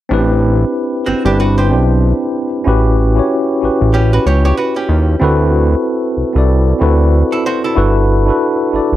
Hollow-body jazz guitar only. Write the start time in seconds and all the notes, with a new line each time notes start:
1.06 C4 F#4
1.26 D4 G4
1.40 F#4 B4
1.58 G4 C5
3.94 C#4 G4
4.13 F#4 B4
4.27 G4 C#5
4.45 G4 C#5
4.57 F#4 B4
4.76 C#4 G4
7.32 E4 A4
7.46 F#4 C5
7.64 E4 A4